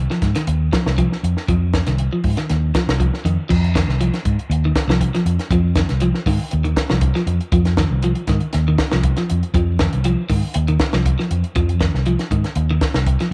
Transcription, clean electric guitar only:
0.11 F3
0.36 D#3
0.73 F3
0.98 F3
1.49 F3
1.88 D#3
2.13 F3
2.38 D#3
2.75 F3
3.00 F3
3.25 D#3
3.49 F3
3.75 D#3
4.01 F3
4.65 D#3
4.89 F3
5.15 F3
5.52 F3
5.77 D#3
6.02 F3
6.27 D#3
6.64 D#3
6.90 F3
7.15 F3
7.53 F3
7.79 D#3
8.04 F3
8.29 D#3
8.68 D#3
8.93 F3
9.18 F3
9.55 F3
9.81 D#3
10.05 F3
10.30 D#3
10.68 D#3
10.94 F3
11.19 F3
11.56 F3
11.81 D#3
12.07 F3
12.32 D#3
12.71 D#3
13.21 F3

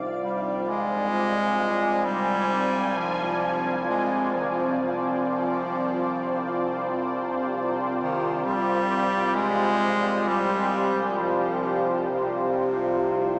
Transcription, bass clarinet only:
0.24 G3
0.69 G#3
2.06 G3
2.98 F3
3.90 G#3
4.35 F3
4.40 D#3
4.49 F3
4.82 F3
8.00 D#3
8.45 G3
9.35 G#3
10.28 G3
11.18 F3
12.10 C3

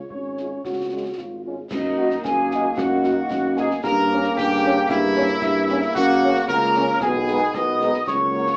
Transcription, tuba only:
0.11 G#1
0.64 C#2
1.18 G#1
1.72 F#2
2.24 F#2
2.77 F#2
3.30 F#2
3.84 G2
4.36 G2
4.90 G2
5.43 G2
5.96 F#2
6.48 C#2
7.01 B1
7.55 B1
8.08 C#2

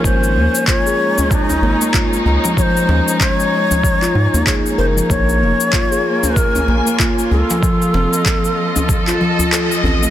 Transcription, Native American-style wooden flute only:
0.05 C5
0.68 C#5
1.31 D4
1.42 D#4
2.58 C#5
2.62 C5
3.21 C#5
4.47 C#5
4.78 C5
5.10 C#5
6.36 A#4
7.31 A4

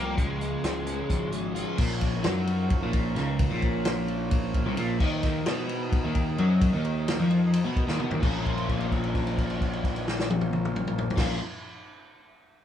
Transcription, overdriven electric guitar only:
Already playing: F3 A3 C4 G4
0.18 C#3
0.41 G#3
0.64 F3
0.86 C#4
1.09 F3
1.32 G#3
1.55 F4
1.78 A#2
2.24 F#3
2.82 A#2
3.16 C#3
3.50 A#2
4.66 C3
4.77 A#2
5.00 D#3
5.47 B3
6.04 D#3
6.38 F#3
6.73 D#3
7.20 F3
7.65 B3
7.88 D#3
7.99 B3
8.10 D#3
8.20 A#2 F3 A#3 C#4
8.24 F4
11.16 A#2 F3 A#3 C#4
11.20 F4

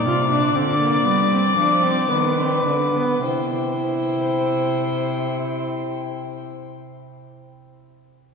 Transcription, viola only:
0.06 F4
0.30 D4
0.55 C4
0.79 A#3
1.05 B3
1.31 C4
1.57 D4
1.83 C4
2.10 B3
2.39 C4
2.66 D4
2.95 B3
3.24 E4

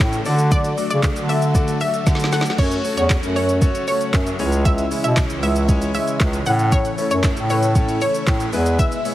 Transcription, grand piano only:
0.00 A3 C#4 E4 A4
0.25 A3 D4 F#4 A4 D5
0.77 A3 D4 F#4 A4 D5
1.03 A3 D4 F#4 A4 D5
1.29 A3 D4 F#4 A4 D5
1.55 A3 D4 F#4 A4 D5
1.80 A3 D4 F#4 A4 E5
2.07 A3 D4 F#4 A4 E5
2.32 A3 D4 F#4 A4 D5
2.58 A3 C#4 F#4 A4 C#5
2.84 A3 C#4 F#4 A4 C#5
3.10 A3 C#4 F#4 A4 C#5
3.36 A3 C#4 F#4 A4 C#5
3.62 A3 C#4 F#4 A4 C#5
3.88 A3 C#4 F#4 A4 C#5
4.13 A3 C#4 F#4 A4 E5
4.39 G#3 C#4 E4 G#4 C#5
4.91 G#3 C#4 E4 G#4 C#5
5.43 G#3 C#4 E4 G#4 C#5
5.69 G#3 C#4 E4 G#4 C#5
5.95 G#3 C#4 E4 G#4 C#5
6.46 A3 C#4 E4 A4 C#5
6.98 A3 C#4 E4 A4 C#5
7.24 A3 C#4 E4 A4 C#5
7.49 A3 C#4 E4 A4 B4
7.75 A3 C#4 E4 A4 C#5
8.01 A3 C#4 E4 A4 C#5
8.27 A3 C#4 E4 A4 C#5
8.53 G#3 B3 E4 G#4 B4
9.05 G#3 B3 E4 G#4 C#5

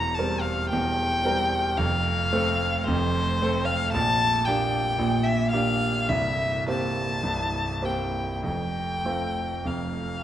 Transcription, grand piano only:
Already playing: E1 E2
0.18 G3 C4 A#4
0.72 E1 E2
1.24 G3 C4 A#4
1.77 F1 F2
2.33 A3 C4 A4
2.87 F1 F2
3.42 A3 C4 A4
3.94 A#1 A#2
4.47 A#3 D4 G4
4.98 A#1 A#2
5.53 A#3 D4 G4
6.09 C1 C2
6.67 A#3 C4 G4
7.24 C1 C2
7.82 A#3 C4 G4
8.43 F1 F2
9.05 A3 C4 F4
9.64 F1 F2

